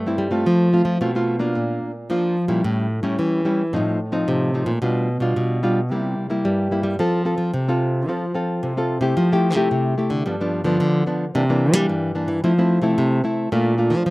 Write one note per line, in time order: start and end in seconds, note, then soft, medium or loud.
0.00 0.44 G2 medium
0.00 0.17 A3 medium
0.06 0.29 G3 medium
0.06 0.29 C4 medium
0.06 0.30 E4 medium
0.18 0.43 G3 medium
0.31 0.69 A3 medium
0.31 0.69 C4 medium
0.31 0.69 F4 medium
0.46 0.81 F3 medium
0.46 0.99 F3 soft
0.73 0.96 A3 medium
0.73 0.97 C4 medium
0.73 0.97 F4 medium
0.85 0.98 F3 medium
1.01 1.55 B2 medium
1.01 1.10 A3 medium
1.01 1.11 C4 medium
1.01 1.11 F4 medium
1.15 1.38 A3 medium
1.15 1.38 C4 medium
1.15 1.38 F4 medium
1.39 1.91 A#3 medium
1.39 1.91 D4 medium
1.39 1.91 F4 medium
1.55 1.79 A#2 medium
1.55 2.07 A#2 medium
2.10 2.45 F3 medium
2.10 2.62 F3 medium
2.10 2.36 A#3 medium
2.10 2.36 D4 medium
2.10 2.36 F4 medium
2.48 2.61 A#2 medium
2.48 2.86 G3 medium
2.48 2.86 C#4 medium
2.48 2.87 E4 medium
2.64 3.16 A2 medium
2.64 2.99 A2 medium
3.03 3.16 A2 medium
3.03 3.41 G3 medium
3.03 3.41 C#4 medium
3.03 3.41 E4 medium
3.19 3.73 E3 medium
3.19 3.71 E3 medium
3.45 3.62 G3 medium
3.45 3.62 C#4 medium
3.45 3.62 E4 medium
3.73 4.25 A2 medium
3.73 3.96 A2 medium
3.73 3.99 F3 medium
3.73 3.99 C4 medium
3.73 3.99 D#4 medium
4.12 4.50 F3 medium
4.12 4.50 C4 medium
4.12 4.50 D#4 medium
4.28 4.80 A2 medium
4.28 4.63 C3 medium
4.54 4.71 F3 medium
4.54 4.71 C4 medium
4.54 4.71 D#4 medium
4.66 4.79 A#2 medium
4.82 5.17 B2 medium
4.82 5.34 B2 medium
4.82 5.08 G3 medium
4.82 5.08 D4 medium
4.82 5.08 F4 medium
5.20 5.33 B2 medium
5.20 5.59 G3 medium
5.20 5.59 D4 medium
5.20 5.59 F4 medium
5.36 5.91 B2 medium
5.36 5.89 B2 medium
5.63 5.79 G3 medium
5.63 5.80 D4 medium
5.63 5.80 F4 medium
5.91 6.14 C3 medium
5.91 6.43 C3 medium
5.91 6.28 G3 medium
5.91 6.28 A#3 medium
5.91 6.28 E4 medium
6.30 6.67 G3 medium
6.30 6.67 A#3 medium
6.30 6.68 E4 medium
6.45 6.97 G2 medium
6.45 6.80 G3 medium
6.71 6.95 G3 medium
6.71 6.95 A#3 medium
6.71 6.95 E4 medium
6.83 6.96 G3 medium
6.99 7.34 F3 medium
6.99 7.51 F3 medium
6.99 7.22 C4 soft
6.99 7.23 F4 medium
6.99 7.23 A4 medium
7.25 7.52 C4 medium
7.25 7.52 F4 medium
7.25 7.52 A4 medium
7.38 7.50 F3 medium
7.54 8.08 C3 medium
7.54 8.06 C3 medium
7.68 8.05 C4 medium
7.68 8.05 F4 medium
7.68 8.05 A4 medium
8.08 8.31 F3 medium
8.08 8.60 F3 medium
8.08 8.25 C4 medium
8.08 8.25 F4 medium
8.08 8.25 A4 medium
8.35 8.72 C4 medium
8.35 8.72 F4 medium
8.35 8.72 A4 medium
8.63 8.98 C3 medium
8.63 9.15 C3 medium
8.77 9.00 C4 medium
8.77 9.00 F4 medium
8.77 9.00 A4 medium
9.01 9.14 C3 medium
9.01 9.31 A3 medium
9.01 9.31 E4 medium
9.01 9.32 G4 medium
9.17 9.55 F3 loud
9.17 9.69 F3 medium
9.32 9.54 A3 medium
9.32 9.55 E4 medium
9.32 9.55 G4 medium
9.55 9.68 C3 medium
9.55 9.94 A3 medium
9.55 9.94 E4 medium
9.55 9.94 G4 medium
9.71 9.95 C3 medium
9.71 10.24 C3 medium
9.98 10.23 A3 medium
9.98 10.24 E4 medium
9.98 10.24 G4 medium
10.10 10.23 D3 medium
10.26 10.78 G2 medium
10.26 10.34 F3 medium
10.26 10.61 G3 medium
10.26 10.35 B3 medium
10.26 10.35 D4 medium
10.41 10.63 F3 medium
10.41 10.63 B3 medium
10.41 10.63 D4 medium
10.64 10.77 D3 medium
10.64 11.02 F3 medium
10.64 11.02 B3 medium
10.64 11.03 D4 medium
10.80 11.03 D3 loud
10.80 11.32 D3 medium
11.06 11.25 F3 medium
11.06 11.25 B3 medium
11.06 11.25 D4 medium
11.35 11.86 C3 medium
11.35 11.73 C3 loud
11.35 11.43 E3 medium
11.35 11.43 A#3 medium
11.35 11.43 D4 medium
11.50 11.72 E3 medium
11.50 11.72 A#3 medium
11.50 11.72 D4 medium
11.73 12.11 E3 medium
11.73 11.86 G3 medium
11.73 12.11 A#3 medium
11.73 12.11 D4 medium
11.89 12.41 G2 medium
11.89 12.12 G3 medium
12.15 12.41 E3 medium
12.15 12.41 A#3 medium
12.15 12.41 D4 medium
12.28 12.40 E3 medium
12.44 12.95 F3 medium
12.44 12.78 F3 medium
12.44 12.52 A3 medium
12.44 12.52 C4 medium
12.44 12.52 E4 medium
12.58 12.80 A3 medium
12.58 12.81 C4 medium
12.58 12.81 E4 medium
12.82 12.94 C3 medium
12.82 13.20 A3 medium
12.82 13.20 C4 medium
12.82 13.20 E4 medium
12.98 13.21 C3 loud
12.98 13.50 C3 medium
13.24 13.49 A3 medium
13.24 13.50 C4 medium
13.24 13.50 E4 medium
13.52 14.04 A#2 medium
13.52 13.93 A#2 loud
13.52 13.75 A3 medium
13.52 13.75 D4 medium
13.52 13.75 F4 medium
13.78 14.04 A3 medium
13.78 14.04 D4 medium
13.78 14.04 F4 medium
13.90 14.03 F3 medium
14.06 14.10 F3 medium